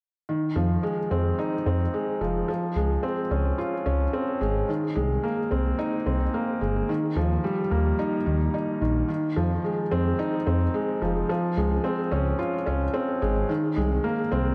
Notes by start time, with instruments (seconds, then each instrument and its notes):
0.29 felt piano D#3
0.56 detuned saw bass F2, felt piano F3
0.83 felt piano G#3
1.11 detuned saw bass F2, felt piano C4
1.39 felt piano D#4
1.66 detuned saw bass F2, felt piano C4
1.94 felt piano G#3
2.21 detuned saw bass F1, felt piano F3
2.48 felt piano F3
2.76 detuned saw bass C#2, felt piano G#3
3.03 felt piano C4
3.31 detuned saw bass C#2, felt piano C#4
3.58 felt piano F4
3.86 detuned saw bass C#2, felt piano C#4
4.13 felt piano C4
4.41 detuned saw bass G#1, felt piano G#3
4.69 felt piano D#3
4.96 detuned saw bass C2, felt piano G#3
5.23 felt piano A#3
5.51 detuned saw bass C2, felt piano C4
5.79 felt piano D#4
6.06 detuned saw bass C2, felt piano C4
6.34 felt piano A#3
6.61 detuned saw bass G1, felt piano G#3
6.89 felt piano D#3
7.16 detuned saw bass D#2, felt piano F3
7.44 felt piano G3
7.71 detuned saw bass D#2, felt piano A#3
7.99 felt piano D#4
8.26 detuned saw bass D#2, felt piano D#3
8.54 felt piano D#4
8.81 detuned saw bass A#1, felt piano D#3
9.09 felt piano D#3
9.36 detuned saw bass F2, felt piano F3
9.64 felt piano G#3
9.91 detuned saw bass F2, felt piano C4
10.19 felt piano D#4
10.47 detuned saw bass F2, felt piano C4
10.74 felt piano G#3
11.02 detuned saw bass F1, felt piano F3
11.29 felt piano F3
11.57 detuned saw bass C#2, felt piano G#3
11.84 felt piano C4
12.11 detuned saw bass C#2, felt piano C#4
12.39 felt piano F4
12.66 detuned saw bass C#2, felt piano C#4
12.94 felt piano C4
13.22 detuned saw bass G#1, felt piano G#3
13.49 felt piano D#3
13.76 detuned saw bass C2, felt piano G#3
14.04 felt piano A#3
14.32 detuned saw bass C2, felt piano C4